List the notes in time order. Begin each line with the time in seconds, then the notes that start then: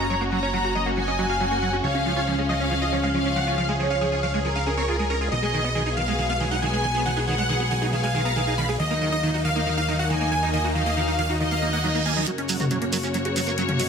Already playing: F#1 F#3 A#3 C#4 A#5
0.10 F#3 C#5
0.21 A#3 F#4
0.32 F#3 F#4 A#5
0.43 C#4 C#5
0.54 F#3 F#4
0.64 F#4
0.75 F#3 D#5
0.86 A#3 F#4
0.97 F#3 F#4 G#5
1.08 C#4 D#5
1.19 F#3 F#4
1.29 F#4 F5
1.40 F#3 F#4
1.51 A#3 F#4
1.62 F#3 F#5
1.73 C#4 F#4
1.84 C#2 F3 G#3 C#5 F5
1.95 C#4
2.06 F3 C#4
2.17 F4 C#5
2.27 F3 C#4
2.38 G#3 C#4
2.49 F3 D#5 F5
2.60 C#4
2.71 F3 C#4
2.82 F4 D#5
2.93 F3 C#4
3.04 G#3 F5
3.14 F3 C#4 F5
3.25 C#4
3.36 F3 F#5
3.47 C#4 F4
3.58 F3 F5
3.69 G#3 G#4
3.80 F3 G#4 C#5
3.90 C#4 F5
4.01 F3 G#4
4.12 F4 G#4
4.23 F3 F5
4.34 G#3 G#4
4.45 F3 G#4 A#4
4.56 C#4 F5
4.67 C#4 G#4
4.77 C4 C#5
4.88 F4 G#4
4.99 G#3 G#4
5.10 C#4 A#4
5.21 F4 G#4
5.32 B1 D#3 F#3 B3 D#5
5.43 G#3 G#4
5.53 D#3 G#4
5.64 B3 D#5
5.75 D#3 G#4
5.86 D#4 G#4
5.97 D#3 F5
6.08 G#3 G#4
6.19 D#3 G#4
6.30 B3 F5
6.40 D#3 G#4
6.51 D#4 F#5
6.62 D#3 G#4 G#5
6.73 G#3 G#4
6.84 D#3 G#5
6.95 B3 G#4
7.06 D#3 F#5
7.16 D#4 G#4
7.27 D#3 G#4 F#5
7.38 G#3 F#5
7.49 D#3 G#4
7.60 B3 G#4
7.71 D#3 G#5
7.82 D#4 G#4
7.93 D#3 G#4 F5
8.04 G#3 G#5
8.14 D#3 G#4
8.25 B3 A#5
8.36 D#3 G#4
8.47 D#4 G#4
8.58 D#3 B5
8.69 G#3 G#4
8.80 D#2 D#3 F#3 A#3 D#5
8.90 A#3 D#4
9.01 D#3 D#4
9.12 D#4 D#5
9.23 D#3 D#4
9.34 D#4 F#4
9.45 D#3 F5
9.56 A#3 D#4
9.67 D#3 D#4
9.77 D#4 F5
9.88 D#3 D#4
9.99 F#4 F#5
10.10 D#3 D#4 G#5
10.21 A#3 D#4
10.32 D#3 G#5
10.43 D#4
10.54 D#3 D#5
10.64 D#4 F#4
10.75 D#3 D#4 F5
10.86 A#3 D#5
10.97 D#3 D#4
11.08 D#4
11.19 D#3 F5
11.29 D#4 F#4
11.40 D#3 D#4 D#5, reverse cymbal
11.51 A#3 F5
11.62 A#3 D#4
11.73 A#3 F#5
11.84 F#3 D#4
11.95 A#3 D#4
12.06 A#3 G#5
12.16 F#3 D#4
12.27 F#2 C#3 F#3 A#3 F#4 A#4 C#5, closed hi-hat, riser, shekere
12.38 C#4, closed hi-hat
12.49 F#3 C#4, open hi-hat, shekere
12.60 F#4 A#4, closed hi-hat, mid tom, shekere
12.71 F#3 C#4, closed hi-hat, shekere
12.82 A#3 C#4, closed hi-hat
12.92 F#3 F#4 A#4, open hi-hat, shekere
13.03 C#4, closed hi-hat, shekere
13.14 F#3 C#4, closed hi-hat, shekere
13.25 F#4 G#4 B4, closed hi-hat
13.36 F#3 C#4, open hi-hat, shekere
13.47 A#3 A#4 C#5, closed hi-hat, shekere
13.58 F#3 C#4, closed hi-hat, shekere
13.69 C#4, closed hi-hat, mid tom
13.79 F#3 F#4 D#5, open hi-hat, shekere